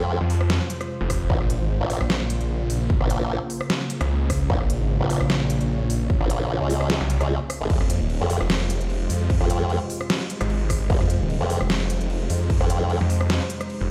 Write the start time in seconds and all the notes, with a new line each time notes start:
Already playing: F2 C3 G#3 F4 C5
0.21 F2
0.30 open hi-hat
0.41 cross-stick
0.50 snare
0.70 closed hi-hat
0.81 cross-stick, closed hi-hat
1.01 F1
1.10 kick, cross-stick, open hi-hat
1.30 A#1 C#3 A#3, kick
1.41 A#1, cross-stick
1.50 closed hi-hat
1.61 G#1
1.81 A#1
1.90 open hi-hat
2.01 A#1, cross-stick
2.10 snare
2.30 closed hi-hat
2.41 A#1, closed hi-hat
2.70 A#1, open hi-hat
2.90 kick
3.01 A#1, cross-stick
3.10 closed hi-hat
3.50 open hi-hat
3.61 cross-stick
3.70 snare
3.90 closed hi-hat
4.01 C#2, cross-stick, closed hi-hat
4.30 kick, cross-stick, open hi-hat
4.50 A#1 C#5, kick
4.61 A#1, cross-stick
4.70 closed hi-hat
4.81 G#1
5.01 A#1
5.10 open hi-hat
5.21 A#1, cross-stick
5.30 snare
5.50 closed hi-hat
5.61 A#1, closed hi-hat
5.90 A#1, open hi-hat
6.10 kick
6.21 A#1, cross-stick
6.30 closed hi-hat
6.61 C#2
6.70 open hi-hat
6.81 cross-stick
6.90 snare
7.01 C2
7.10 closed hi-hat
7.21 C#2, cross-stick, closed hi-hat
7.50 cross-stick, open hi-hat
7.61 G#1
7.70 F1 C3 G#3 F4 C5, kick, crash
7.81 F2, cross-stick
7.90 closed hi-hat
8.01 D#1
8.10 crash
8.21 F2
8.30 open hi-hat
8.41 F1, cross-stick
8.50 snare, crash
8.70 closed hi-hat
8.81 F1, closed hi-hat
8.90 crash
9.10 F2, open hi-hat
9.30 kick, crash
9.41 F2, cross-stick
9.50 closed hi-hat
9.70 crash
9.90 open hi-hat
10.01 cross-stick
10.10 snare, crash
10.30 closed hi-hat
10.41 G#1, cross-stick, closed hi-hat
10.50 crash
10.70 kick, cross-stick, open hi-hat
10.90 F1 D#4, kick, crash
11.01 F2, cross-stick
11.10 closed hi-hat
11.21 D#1
11.30 crash
11.41 F2
11.50 open hi-hat
11.61 F1, cross-stick
11.70 snare, crash
11.90 closed hi-hat
12.01 F1, closed hi-hat
12.10 crash
12.30 F2, open hi-hat
12.50 kick, crash
12.61 F2, cross-stick
12.70 closed hi-hat
12.90 crash
13.01 F2
13.10 open hi-hat
13.21 cross-stick
13.30 snare, crash
13.50 closed hi-hat
13.61 cross-stick, closed hi-hat
13.70 crash
13.81 F1